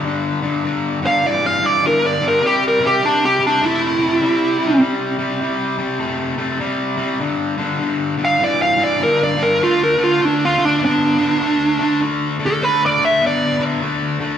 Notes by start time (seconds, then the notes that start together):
0.05 G2 D3
0.42 G2 D3
0.64 G2 D3
1.02 G2 D3
1.07 F5
1.24 G2 E3 D5
1.46 F5
1.62 G2 E3 D5
1.83 G2 D3 A#4
2.06 D5
2.21 G2 D3
2.28 A#4
2.42 C3 G3 G4
2.68 A#4
2.80 C3 G3
2.86 G4
3.02 C3 G3 D4
3.25 G4
3.39 C3 G3
3.47 D4
3.62 C3 A3 E4
3.99 C3 A3
4.21 C3 G3
4.59 C3 G3
4.80 C3 G3
5.19 C3 G3
5.41 C3 G3
5.78 C3 G3
5.99 C3 A3
6.37 C3 A3
6.60 C3 G3
6.97 C3 G3
7.20 G2 D3
7.58 G2 D3
7.79 G2 D3
8.17 G2 D3
8.25 F5
8.39 G2 E3
8.44 D5
8.62 F5
8.77 G2 E3
8.84 D5
9.00 G2 D3 A#4
9.23 D5
9.37 G2 D3
9.43 A#4
9.61 D3 A3 F4
9.83 A#4
9.98 D3 A3
10.04 F4
10.20 D3 A3
10.25 D4
10.45 F4
10.58 D3 A3
10.65 D4
10.80 D3 B3
10.85 D4
11.18 D3 B3
11.40 D3 A3
11.79 D3 A3
12.01 D3 A3
12.39 D3 A3
12.46 A4
12.62 D3 A3 B4
12.86 D5
12.99 D3 A3
13.05 E5
13.22 D3 B3
13.27 D5
13.59 D3 B3
13.82 D3 A3
14.20 D3 A3